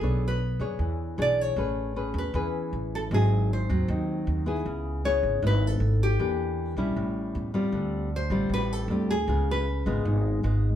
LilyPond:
<<
  \new Staff \with { instrumentName = "Nylon-string guitar" } { \time 4/4 \key a \major \tempo 4 = 156 gis'8 b'4. r4 d''8 cis''8~ | cis''4. b'2 a'8 | gis'4 bis'2 r4 | r4 cis''4 b'8 a'4 g'8~ |
g'2~ g'8 r4. | r4 c''4 b'8 a'4 gis'8~ | gis'8 b'4. r2 | }
  \new Staff \with { instrumentName = "Nylon-string guitar" } { \time 4/4 \key a \major << { <d' a' cis''>4 r8 <d' gis' cis''>4. <d' gis' cis''>4 | <cis' gis' b'>4 <cis' gis' b'>4 <cis' gis' b'>2 | <fis bis e'>4. <fis bis>2 <b e' gis'>8~ | <b e' gis'>4 <b e' gis'>4 <b e'>2 |
<bes d' g'>4. <g cis' e'>2 <g c' f'>8~ | <g c' f'>4 r8 <g c' f'>4. <g c' f'>8 r8 | <gis b eis'>4 r8 <gis b eis'>4. <gis b eis'>8 r8 | } \\ { b2 e2 | a2 e2 | gis,2 dis2 | cis2 gis,2 |
e2 a,2 | d2 a,2 | cis2 gis,2 | } >> }
  \new Staff \with { instrumentName = "Upright bass" } { \clef bass \time 4/4 \key a \major b,,4. fis,8 e,4 b,,4 | a,,4. e,8 e,4 a,,4 | gis,,4. dis,8 dis,4 dis,4 | cis,4. gis,,8 gis,,4 gis,,4 |
e,4. bes,,8 a,,4 e,4 | d,4. a,,8 a,,4 d,4 | cis,4. gis,,8 gis,,4 gis,,4 | }
>>